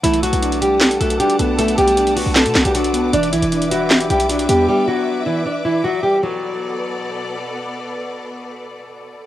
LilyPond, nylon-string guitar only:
\new Staff \with { instrumentName = "Nylon-string guitar" } { \time 4/4 \key b \minor \tempo 4 = 155 <e e'>8 <fis fis'>4 <g g'>4 <a a'>8 <g g'>8 <a a'>8 | <a a'>8 <g g'>4 <fis fis'>8 <a a'>8. <g g'>16 <fis fis'>4 | <d' d''>8 <e e'>4 <fis fis'>4 <g g'>8 <fis fis'>8 <g g'>8 | <g g'>8 <fis fis'>4 <e e'>8 <d' d''>8 <e e'>8 <fis fis'>8 <g g'>8 |
fis2. r4 | r1 | }